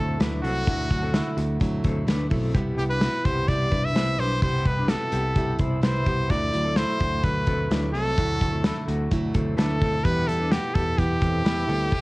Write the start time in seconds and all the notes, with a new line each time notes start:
Already playing: D2 D3 F#3 A3 C4 E4 A4
0.19 D2 D3 F#3 A3 D4 E4 B4, snare, closed hi-hat
0.43 C2 F#3 A3 C4 E4 F#4 A4, open hi-hat
0.66 D2 D3 F#3 A3 E4 F#4, kick, closed hi-hat
0.90 D2 F#3 A3 E4, kick, closed hi-hat
1.02 C4 A4
1.13 D3 F#3 A3 E4, snare, closed hi-hat
1.37 D2 A3 F#4, closed hi-hat
1.60 D2 D3 F#3 A3 E4, kick, closed hi-hat
1.84 D2 C4 A4, kick, closed hi-hat
2.07 D2 D3 F#3 A3 D4 E4 B4, snare, closed hi-hat
2.30 B1 F#3 A3 C4 E4 A4, kick, open hi-hat
2.54 C2 C3 G3 B3 E4 G4, kick, closed hi-hat
2.77 C2 G3 B3 E4 G4, closed hi-hat
2.90 D4 B4
3.00 C3 G3 B3 E4 F#4, snare, closed hi-hat
3.25 C2 B3 G4 C5, kick, closed hi-hat
3.48 C2 C3 G3 B3 E4 D5, kick, closed hi-hat
3.71 C2 D4 B4, kick, closed hi-hat
3.85 E5
3.95 C2 C3 G3 B3 E4 C5, snare, closed hi-hat
4.18 B1 G3 B3 D4 E4 B4 C5, open hi-hat
4.41 C2 C3 G3 B3 E4 G4 C5, kick, closed hi-hat
4.66 C2 B4, kick, closed hi-hat
4.78 D4 B4
4.88 C3 G3 B3 E4 F#4 A4, snare, closed hi-hat
5.12 C2 B3 G4, closed hi-hat
5.36 C2 C3 G3 B3 E4, kick, closed hi-hat
5.59 C2 E4 C5, kick, closed hi-hat
5.82 C2 C3 G3 B3 E4 B4 C5, snare, closed hi-hat
6.06 C2 G3 B3 E4 G4, kick, closed hi-hat
6.30 D2 D3 F#3 A3 E4 F#4 D5, kick, closed hi-hat
6.53 D2 F#3 A3 E4, closed hi-hat
6.65 C4 A4
6.76 D3 F#3 A3 E4 C5, snare, closed hi-hat
7.00 D2 A3 F#4, kick, closed hi-hat
7.23 D2 D3 F#3 A3 E4 B4, kick, closed hi-hat
7.47 D2 C4 A4, kick, closed hi-hat
7.70 D2 D3 F#3 A3 D4 E4 B4, snare, closed hi-hat
7.94 C2 F#3 A3 C4 E4 A4, open hi-hat
8.17 D2 D3 F#3 A3 E4 F#4, kick, closed hi-hat
8.41 D2, kick, closed hi-hat
8.52 C4 A4
8.64 D3 F#3 A3 E4, snare, closed hi-hat
8.88 D2 A3 F#4, closed hi-hat
9.11 D2 D3 F#3 A3 E4, kick, closed hi-hat
9.34 D2 C4 A4, kick, closed hi-hat
9.57 D2 D3 F#3 A3 D4 E4 A4 B4, snare, closed hi-hat
9.80 D2 F#3 A3 C4 E4 A4, kick, open hi-hat
10.04 E2 E3 G3 B3 E4 G4 B4, kick, closed hi-hat
10.27 E2 G3 B3 E4 A4, closed hi-hat
10.40 D4 B4
10.50 E3 G3 B3 E4 F#4 G4, snare, closed hi-hat
10.74 E2 B3 G4 A4, kick, closed hi-hat
10.97 E2 E3 G3 B3 E4 G4, kick, closed hi-hat
11.21 E2 C4 A4, kick, closed hi-hat
11.43 E2 E3 G3 B3 E4 B4, snare, closed hi-hat
11.67 D2 G3 B3 C4 E4 A4, open hi-hat
11.92 kick, crash